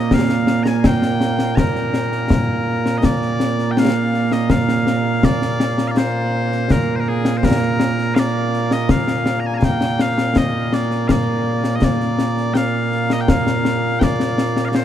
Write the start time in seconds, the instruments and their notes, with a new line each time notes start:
Already playing: bagpipes A#2 A#3 D#5
0.11 bagpipes F5, concert bass drum, snare
0.29 snare
0.47 snare
0.63 bagpipes A#5, snare
0.68 bagpipes G#5
0.78 bagpipes G#5
0.84 bagpipes G5, concert bass drum, snare
1.02 snare
1.21 snare
1.39 snare
1.56 bagpipes A#4 A#5, concert bass drum, snare
1.75 snare
1.94 snare
2.12 snare
2.30 concert bass drum, snare
2.86 snare
2.98 bagpipes D#5
3.03 bagpipes D5, concert bass drum, snare
3.22 snare
3.40 snare
3.59 snare
3.71 bagpipes G5
3.77 bagpipes F5, snare
4.14 snare
4.32 bagpipes D#5, snare
4.50 bagpipes F5, concert bass drum, snare
4.69 snare
4.87 snare
5.23 bagpipes D5, concert bass drum, snare
5.42 snare
5.60 snare
5.78 snare
5.87 bagpipes D5 F5
5.97 bagpipes C5, snare
6.52 snare
6.70 bagpipes A#4, concert bass drum, snare
6.96 bagpipes C5
7.00 bagpipes A#4
7.08 bagpipes G#4
7.25 snare
7.37 bagpipes C5
7.43 bagpipes A#4, concert bass drum, snare
7.62 snare
7.80 snare
7.98 snare
8.15 bagpipes D5 F5, snare
8.53 snare
8.71 bagpipes D#5, snare
8.89 bagpipes F5, concert bass drum, snare
9.07 snare
9.26 snare
9.40 bagpipes A#5
9.46 bagpipes G#5
9.54 bagpipes G#5 A#5
9.62 bagpipes G5, concert bass drum, snare
9.81 snare
9.99 bagpipes F5, snare
10.18 snare
10.36 bagpipes D#5, concert bass drum, snare
10.73 bagpipes D5, snare
10.91 snare
11.08 bagpipes D5 F5, concert bass drum, snare
11.64 snare
11.75 bagpipes D#5
11.82 bagpipes D5, concert bass drum, snare
12.01 snare
12.19 snare
12.37 snare
12.54 bagpipes F5 G5, snare
12.92 snare
13.10 bagpipes D#5, snare
13.21 bagpipes G5
13.28 bagpipes F5, concert bass drum, snare
13.47 snare
13.65 snare
13.99 bagpipes D5 G5, concert bass drum, snare
14.20 snare
14.38 snare
14.56 snare
14.65 bagpipes D5 F5
14.75 bagpipes C5, snare